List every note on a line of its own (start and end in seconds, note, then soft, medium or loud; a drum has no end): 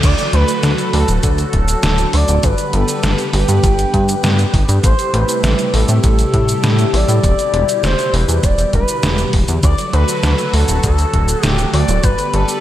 0.03 0.14 D2 loud
0.03 4.80 D3 medium
0.03 2.41 F#3 medium
0.03 2.41 A3 medium
0.03 2.41 F#4 medium
0.03 2.41 A4 medium
0.03 0.32 D5 loud
0.03 kick loud
0.03 closed hi-hat loud
0.03 crash loud
0.03 cabasa soft
0.18 closed hi-hat soft
0.18 cabasa soft
0.33 0.44 D2 loud
0.33 0.90 B4 loud
0.33 closed hi-hat medium
0.48 closed hi-hat soft
0.48 cabasa medium
0.63 0.74 D2 loud
0.63 snare loud
0.63 closed hi-hat medium
0.63 cabasa soft
0.78 closed hi-hat soft
0.78 cabasa soft
0.93 1.04 D2 loud
0.93 1.07 A4 medium
0.93 open hi-hat medium
1.08 1.19 D1 medium
1.08 closed hi-hat soft
1.08 cabasa medium
1.23 1.45 D2 loud
1.23 2.15 A4 loud
1.23 kick loud
1.23 closed hi-hat loud
1.23 cabasa soft
1.38 closed hi-hat soft
1.38 cabasa soft
1.53 1.75 D1 medium
1.53 kick medium
1.53 closed hi-hat medium
1.68 closed hi-hat soft
1.68 cabasa medium
1.83 2.05 D1 medium
1.83 snare loud
1.83 closed hi-hat medium
1.83 cabasa soft
1.98 closed hi-hat soft
1.98 cabasa soft
2.13 2.24 D2 medium
2.13 2.46 D5 loud
2.13 open hi-hat medium
2.28 2.39 D1 medium
2.28 closed hi-hat soft
2.28 cabasa medium
2.43 2.54 G1 loud
2.43 9.60 G3 medium
2.43 4.81 B3 medium
2.43 9.60 G4 medium
2.43 4.81 B4 medium
2.43 2.76 B4 loud
2.43 kick loud
2.43 closed hi-hat loud
2.43 cabasa soft
2.58 closed hi-hat soft
2.58 cabasa soft
2.73 2.84 G1 loud
2.73 3.34 A4 loud
2.73 closed hi-hat medium
2.88 closed hi-hat soft
2.88 cabasa medium
3.03 3.14 G1 medium
3.03 snare loud
3.03 closed hi-hat medium
3.03 cabasa soft
3.18 closed hi-hat soft
3.18 cabasa soft
3.33 3.44 G1 loud
3.33 4.50 G4 medium
3.33 open hi-hat medium
3.49 3.59 G2 medium
3.49 closed hi-hat soft
3.49 cabasa medium
3.64 3.85 G1 loud
3.64 kick loud
3.64 closed hi-hat loud
3.64 cabasa soft
3.79 closed hi-hat soft
3.79 cabasa soft
3.94 4.15 G2 medium
3.94 kick medium
3.94 closed hi-hat medium
4.09 closed hi-hat soft
4.09 cabasa medium
4.24 4.45 G2 medium
4.24 snare loud
4.24 closed hi-hat loud
4.24 cabasa soft
4.39 closed hi-hat soft
4.39 cabasa soft
4.54 4.64 G1 medium
4.54 kick loud
4.54 open hi-hat medium
4.69 4.79 G2 medium
4.69 closed hi-hat soft
4.69 cabasa medium
4.84 4.94 A1 loud
4.84 7.21 C3 medium
4.84 7.21 A3 medium
4.84 9.60 E4 medium
4.84 5.15 C5 loud
4.84 kick loud
4.84 closed hi-hat loud
4.84 cabasa soft
4.99 closed hi-hat soft
4.99 cabasa soft
5.14 5.24 A1 loud
5.14 5.76 B4 loud
5.14 closed hi-hat medium
5.29 closed hi-hat soft
5.29 cabasa medium
5.44 5.54 A1 medium
5.44 snare loud
5.44 closed hi-hat medium
5.44 cabasa soft
5.59 closed hi-hat soft
5.59 cabasa soft
5.74 5.84 A1 loud
5.74 6.04 A4 medium
5.74 open hi-hat medium
5.89 5.99 A2 medium
5.89 closed hi-hat soft
5.89 cabasa medium
6.04 6.25 A1 loud
6.04 6.95 A4 loud
6.04 kick loud
6.04 closed hi-hat loud
6.04 cabasa soft
6.19 closed hi-hat soft
6.19 cabasa soft
6.34 6.55 A2 medium
6.34 kick medium
6.34 closed hi-hat medium
6.49 closed hi-hat soft
6.49 cabasa medium
6.64 6.85 A2 medium
6.64 snare loud
6.64 closed hi-hat loud
6.64 cabasa soft
6.79 closed hi-hat soft
6.79 cabasa soft
6.94 7.04 A1 medium
6.94 7.83 D5 loud
6.94 open hi-hat medium
7.08 7.19 A2 medium
7.08 closed hi-hat soft
7.08 cabasa medium
7.24 7.34 E1 loud
7.24 9.61 B2 medium
7.24 12.60 D3 medium
7.24 kick loud
7.24 closed hi-hat medium
7.24 cabasa medium
7.39 closed hi-hat soft
7.39 cabasa soft
7.53 7.64 E1 medium
7.53 closed hi-hat medium
7.69 closed hi-hat soft
7.69 cabasa medium
7.83 7.94 E1 medium
7.83 8.15 C5 loud
7.83 snare loud
7.83 closed hi-hat medium
7.83 cabasa medium
7.99 closed hi-hat soft
7.99 cabasa soft
8.13 8.24 E1 loud
8.13 8.46 B4 loud
8.13 open hi-hat medium
8.28 8.39 E2 medium
8.28 closed hi-hat soft
8.28 cabasa medium
8.43 8.65 E1 medium
8.43 8.73 D5 loud
8.43 kick loud
8.43 closed hi-hat medium
8.43 cabasa medium
8.59 closed hi-hat soft
8.59 cabasa soft
8.73 8.84 E1 medium
8.73 9.30 B4 medium
8.73 kick medium
8.73 closed hi-hat medium
8.88 closed hi-hat soft
8.88 cabasa medium
9.03 9.25 E1 loud
9.03 snare loud
9.03 closed hi-hat medium
9.03 cabasa medium
9.18 closed hi-hat soft
9.18 cabasa soft
9.33 9.44 E1 medium
9.33 kick loud
9.33 open hi-hat medium
9.48 9.59 E2 medium
9.48 closed hi-hat soft
9.48 cabasa medium
9.63 9.74 D2 loud
9.63 12.01 F#3 medium
9.63 12.01 A3 medium
9.63 12.01 F#4 medium
9.63 12.01 A4 medium
9.63 9.91 D5 loud
9.63 kick loud
9.63 closed hi-hat medium
9.63 cabasa medium
9.78 closed hi-hat soft
9.78 cabasa soft
9.93 10.04 D2 loud
9.93 10.55 B4 loud
9.93 closed hi-hat medium
10.09 closed hi-hat soft
10.09 cabasa medium
10.23 10.34 D2 medium
10.23 snare loud
10.23 closed hi-hat medium
10.23 cabasa medium
10.38 closed hi-hat soft
10.38 cabasa soft
10.53 10.64 D2 loud
10.53 10.83 A4 loud
10.53 open hi-hat medium
10.68 10.79 D1 medium
10.68 closed hi-hat soft
10.68 cabasa medium
10.83 11.05 D2 loud
10.83 11.45 A4 loud
10.83 kick loud
10.83 closed hi-hat medium
10.83 cabasa medium
10.99 closed hi-hat soft
10.99 cabasa soft
11.14 11.35 D1 medium
11.14 kick medium
11.14 closed hi-hat medium
11.29 closed hi-hat soft
11.29 cabasa medium
11.44 11.65 D1 medium
11.44 11.70 G4 loud
11.44 snare loud
11.44 closed hi-hat medium
11.44 cabasa medium
11.59 closed hi-hat soft
11.59 cabasa soft
11.73 11.84 D2 medium
11.73 12.04 D5 loud
11.73 open hi-hat medium
11.89 11.99 D1 medium
11.89 closed hi-hat soft
11.89 cabasa medium
12.03 12.14 G1 loud
12.03 12.60 G3 medium
12.03 12.60 B3 medium
12.03 12.60 G4 medium
12.03 12.35 B4 loud
12.03 12.60 B4 medium
12.03 kick loud
12.03 closed hi-hat medium
12.03 cabasa medium
12.18 closed hi-hat soft
12.18 cabasa soft
12.33 12.44 G1 loud
12.33 12.60 A4 loud
12.33 closed hi-hat medium
12.49 closed hi-hat soft
12.49 cabasa medium